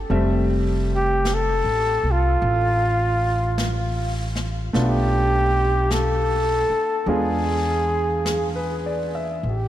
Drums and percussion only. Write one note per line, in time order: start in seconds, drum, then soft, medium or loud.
0.10 brush sweep soft
1.25 brush sweep soft
1.25 snare soft
1.25 hi-hat pedal medium
2.41 brush sweep soft
3.58 brush sweep soft
3.58 snare soft
3.58 hi-hat pedal soft
4.36 snare soft
4.74 brush sweep soft
4.74 snare soft
5.91 brush sweep soft
5.91 snare soft
5.91 hi-hat pedal medium
7.07 brush sweep soft
8.26 brush sweep soft
8.26 snare soft
8.26 hi-hat pedal soft
9.44 brush sweep soft